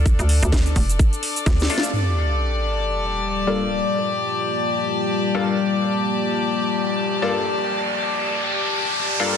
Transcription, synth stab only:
X:1
M:4/4
L:1/16
Q:"Swing 16ths" 1/4=128
K:Gm
V:1 name="Synth stab"
z12 z2 [A,DFA] z | z12 z [G,,B,DFA]2 z | z12 z [G,,B,DFA]2 z | z12 z [G,,B,DFA]2 z |
z12 z2 [G,,B,DFA] z |]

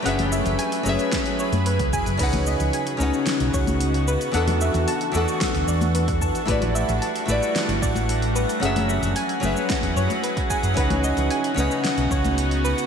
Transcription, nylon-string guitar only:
X:1
M:4/4
L:1/8
Q:1/4=112
K:F#m
V:1 name="Nylon-string guitar"
[F,CGBe]3 [F,CGBe]4- [F,CGBe] | [C,C^DBf]3 [C,CDBf]4- [C,CDBf] | [E,B,DAf]3 [E,B,DAf]4- [E,B,DAf] | [A,E=GBd]3 [A,EGBd]4- [A,EGBd] |
[F,CGBe]3 [F,CGBe]4- [F,CGBe] | [C,C^DBf]3 [C,CDBf]4- [C,CDBf] |]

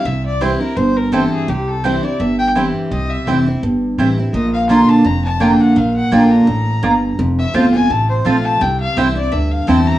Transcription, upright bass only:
X:1
M:4/4
L:1/8
Q:"Swing" 1/4=168
K:Cmix
V:1 name="Upright bass" clef=bass
C,,4 G,,,4 | C,,4 G,,,4 | C,,2 F,,,2 G,,,2 A,,,2 | B,,,4 F,,,4 |
B,,,2 B,,,2 A,,,2 G,,,2 | F,,,2 G,,,2 A,,,2 B,,,2 | C,,2 C,,2 D,,2 E,,2 |]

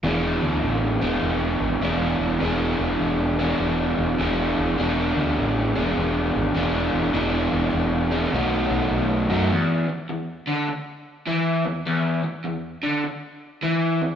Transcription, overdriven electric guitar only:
X:1
M:4/4
L:1/8
Q:"Swing" 1/4=101
K:Emix
V:1 name="Overdriven electric guitar"
[E,B,DG]3 [E,B,DG]3 [E,B,DG]2 | [E,B,DG]3 [E,B,DG]3 [E,B,DG]2 | [E,B,DG]3 [E,B,DG]3 [E,B,DG]2 | [E,B,DG]3 [E,B,DG] [B,,F,A,^DF]3 [B,,F,A,DF] |
E,, z E,, D, z2 E, E,, | E,, z E,, D, z2 E, E,, |]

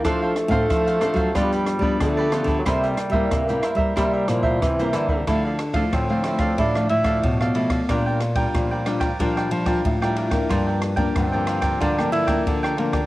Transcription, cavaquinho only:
X:1
M:4/4
L:1/16
Q:1/4=92
K:Cmix
V:1 name="Cavaquinho"
[DAcf] [Acf] z [Acf]2 [Acf] [DAcf] [Acf] [FG=Bd] [GBd] z [GBd]2 [GBd] [FGBd] [GBd] | [EBce] [Bce] z [Bce]2 [Bce] [EBce] [Bce] [EBce] [Bce] z [Bce]2 [Bce] [EBce] [Bce] | [K:Dm] [EAdf] [Adf] z [Adf]2 [Adf] [EAdf] [Adf] [EAdf] [Adf] z [Adf]2 [Adf] [EAdf] [Adf] | [DBdg] [Bdg] z [Bdg]2 [Bdg] [DBdg] [Bdg] [DBdg] [Bdg] z [Bdg]2 [Bdg] [DBdg] [Bdg] |
[FBdg] [Bdg] z [Bdg]2 [Bdg] [FBdg] [Bdg] [FBdg] [Bdg] z [Bdg]2 [Bdg] [FBdg] [Bdg] |]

